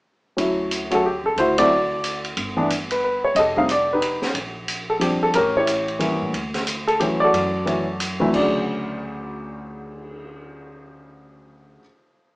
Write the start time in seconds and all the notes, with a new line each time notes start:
0.37 D2 F#3 A3 C#4 E4, ride
0.71 hi-hat pedal, ride
0.91 F#3 A3 C#4 F#4, ride
0.95 A4
1.06 G4
1.24 C#2 A4
1.36 D2 E4 F#4 C5, ride
1.58 F#3 A3 C4 E4 F#4 A4 D5, kick, ride
2.04 hi-hat pedal, ride
2.24 ride
2.37 G1, ride
2.57 E3 A3 B3 D4
2.70 hi-hat pedal, ride
2.90 B4, ride
3.04 B4
3.24 C#5
3.35 F1 G4 A4 D#5, ride
3.56 G3 A3 C4 D#4 F5, kick
3.69 D5, hi-hat pedal, ride
3.93 D#4 G4 B4
4.02 ride
4.22 muted upright bass stroke, snare
4.34 A#1, ride
4.68 hi-hat pedal, ride
4.90 A4
4.99 F3 G3 C4 D4 G4, ride
5.22 A4, muted upright bass stroke
5.33 A1 C#4 G4 A#4, ride
5.57 E4 G4 C#5
5.67 hi-hat pedal, ride
5.88 ride
5.99 E3 G3 A#3 C#4, ride
6.12 E2
6.22 A2
6.33 D2, ride
6.54 snare, ride
6.67 hi-hat pedal, ride
6.87 A4, ride
7.00 E3 F#3 A3 C#4 G4, ride
7.20 A4 D5
7.24 F#4
7.33 F#2, ride
7.65 E3 F#3 A3 C#4, ride
8.00 hi-hat pedal, ride
8.20 D2 E3 F#3 A3 E4
8.27 D2
8.31 D2 D3 F#3, kick, crash
8.36 C#3 D5
8.54 cymbal swell